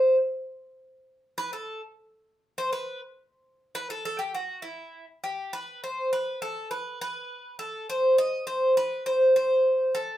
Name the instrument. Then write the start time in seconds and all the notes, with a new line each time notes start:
bouzouki
Already playing: C5
1.38 B4
1.53 A4
2.58 C5
2.73 B4
3.75 B4
3.90 A4
4.05 A4
4.19 G4
4.35 F#4
4.62 E4
5.24 G4
5.53 B4
5.84 C5
6.13 B4
6.42 A4
6.71 B4
7.01 B4
7.59 A4
7.90 C5
8.18 D#5
8.47 C5
8.77 B4
9.06 C5
9.36 C5
9.95 A4